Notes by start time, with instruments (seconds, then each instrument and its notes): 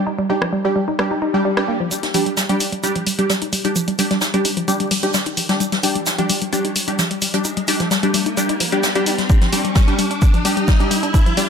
0.07 synth arpeggio sound D#4
0.19 synth arpeggio sound G3
0.29 synth stab G3 D4 G4, synth arpeggio sound D#4
0.42 synth arpeggio sound F3, cross-stick
0.53 synth arpeggio sound G3
0.65 synth arpeggio sound G3, synth stab G3 D4 G4
0.76 synth arpeggio sound G3
0.88 synth arpeggio sound D#4
0.99 synth arpeggio sound G3, synth stab G3 D4 G4, cross-stick, swell
1.11 synth arpeggio sound D#4
1.22 synth arpeggio sound D#4
1.34 synth arpeggio sound G3, synth stab G3 D4 G4
1.45 synth arpeggio sound G3
1.57 synth arpeggio sound G3, synth stab G3 D4 G4, cross-stick
1.68 synth arpeggio sound A#3
1.80 synth arpeggio sound F3
1.91 synth arpeggio sound G3, closed hi-hat, riser, shaker
2.03 synth arpeggio sound D#4, snare, closed hi-hat
2.14 synth arpeggio sound F3, synth stab G3 D4 G4, open hi-hat, shaker
2.26 synth arpeggio sound G3, closed hi-hat
2.37 synth arpeggio sound G3, snare, closed hi-hat, shaker
2.49 synth arpeggio sound G3, synth stab G3 D4 G4, closed hi-hat
2.60 synth arpeggio sound D#4, open hi-hat, shaker
2.72 synth arpeggio sound G3, closed hi-hat
2.83 synth stab G3 D4 G4, synth arpeggio sound D#4, closed hi-hat, shaker
2.96 synth arpeggio sound F3, closed hi-hat
3.07 synth arpeggio sound G3, open hi-hat, shaker
3.19 synth stab G3 D4 G4, synth arpeggio sound G3, closed hi-hat
3.29 synth arpeggio sound G3, snare, closed hi-hat, shaker
3.42 synth arpeggio sound D#4, closed hi-hat
3.53 synth arpeggio sound G3, open hi-hat, shaker
3.64 synth stab G3 D4 G4, synth arpeggio sound D#4, closed hi-hat
3.76 synth arpeggio sound F3, closed hi-hat, shaker
3.88 synth arpeggio sound G3, closed hi-hat
3.99 synth stab G3 D4 G4, synth arpeggio sound G3, open hi-hat, shaker
4.11 synth arpeggio sound G3, snare, closed hi-hat
4.21 synth arpeggio sound D#4, snare, closed hi-hat, shaker
4.34 synth arpeggio sound G3, synth stab G3 D4 G4, closed hi-hat
4.45 synth arpeggio sound D#4, open hi-hat, shaker
4.57 synth arpeggio sound F3, closed hi-hat
4.68 synth stab G3 D4 G4, synth arpeggio sound G3, closed hi-hat, shaker
4.80 synth arpeggio sound G3, closed hi-hat
4.91 synth arpeggio sound G3, open hi-hat
5.03 synth stab G3 D4 G4, synth arpeggio sound D#4, closed hi-hat
5.14 synth arpeggio sound G3, snare, closed hi-hat, shaker
5.26 synth arpeggio sound D#4, closed hi-hat
5.37 synth arpeggio sound F3, open hi-hat, shaker
5.49 synth stab G3 D4 G4, synth arpeggio sound G3, snare, closed hi-hat
5.60 synth arpeggio sound G3, closed hi-hat, shaker
5.72 synth arpeggio sound G3, snare, closed hi-hat
5.83 synth stab G3 D4 G4, synth arpeggio sound D#4, open hi-hat, shaker
5.95 synth arpeggio sound G3, closed hi-hat
6.06 synth arpeggio sound D#4, snare, closed hi-hat, shaker
6.18 synth arpeggio sound F3, synth stab G3 D4 G4, closed hi-hat
6.30 synth arpeggio sound G3, open hi-hat, shaker
6.42 synth arpeggio sound G3, closed hi-hat
6.53 synth stab G3 D4 G4, synth arpeggio sound G3, closed hi-hat, shaker
6.65 synth arpeggio sound D#4, closed hi-hat
6.76 synth arpeggio sound G3, open hi-hat, shaker
6.88 synth stab G3 D4 G4, synth arpeggio sound D#4, closed hi-hat
6.99 synth arpeggio sound F3, snare, closed hi-hat, shaker
7.11 synth arpeggio sound G3, closed hi-hat
7.22 synth arpeggio sound G3, open hi-hat, shaker
7.34 synth arpeggio sound G3, synth stab G3 D4 G4, closed hi-hat
7.44 synth arpeggio sound D#4, closed hi-hat, shaker
7.57 synth arpeggio sound G3, closed hi-hat
7.68 synth stab G3 D4 G4, synth arpeggio sound D#4, open hi-hat, shaker
7.80 synth arpeggio sound F3, snare, closed hi-hat
7.91 synth arpeggio sound G3, snare, closed hi-hat, shaker
8.03 synth arpeggio sound G3, synth stab G3 D4 G4, closed hi-hat
8.14 synth arpeggio sound G3, open hi-hat, shaker
8.26 synth arpeggio sound D#4, closed hi-hat
8.37 synth stab G3 D4 G4, synth arpeggio sound G3, closed hi-hat, shaker
8.49 synth arpeggio sound D#4, closed hi-hat
8.60 synth arpeggio sound F3, open hi-hat
8.72 synth stab G3 D4 G4, synth arpeggio sound G3, closed hi-hat
8.83 synth arpeggio sound G3, snare, closed hi-hat, shaker
8.95 synth arpeggio sound G3, synth stab G3 D4 G4, closed hi-hat
9.06 synth arpeggio sound D#4, open hi-hat, shaker
9.18 synth arpeggio sound G3, snare, closed hi-hat
9.30 synth arpeggio sound D4, kick, closed hi-hat, shaker
9.41 synth arpeggio sound F3, snare, closed hi-hat
9.53 synth arpeggio sound G3, synth stab G3 D4 G4, open hi-hat, shaker
9.65 synth arpeggio sound G3, closed hi-hat
9.75 synth arpeggio sound G3, kick, snare, closed hi-hat, shaker
9.88 synth stab G3 D4 G4, synth arpeggio sound D4, closed hi-hat
9.98 synth arpeggio sound G3, open hi-hat, shaker
10.11 synth arpeggio sound D4, closed hi-hat
10.22 synth arpeggio sound D4, kick, closed hi-hat, shaker
10.34 synth arpeggio sound F3, closed hi-hat
10.45 synth arpeggio sound G3, synth stab G3 D4 G4, open hi-hat, shaker
10.57 synth arpeggio sound G3, closed hi-hat
10.68 synth arpeggio sound G3, kick, snare, closed hi-hat, shaker
10.80 synth stab G3 D4 G4, synth arpeggio sound D4, closed hi-hat
10.91 synth arpeggio sound G3, open hi-hat, shaker
11.03 synth arpeggio sound D4, closed hi-hat
11.14 synth arpeggio sound D4, kick, closed hi-hat, shaker
11.26 synth arpeggio sound F3, closed hi-hat
11.37 synth arpeggio sound G3, synth stab G3 D4 G4, open hi-hat, shaker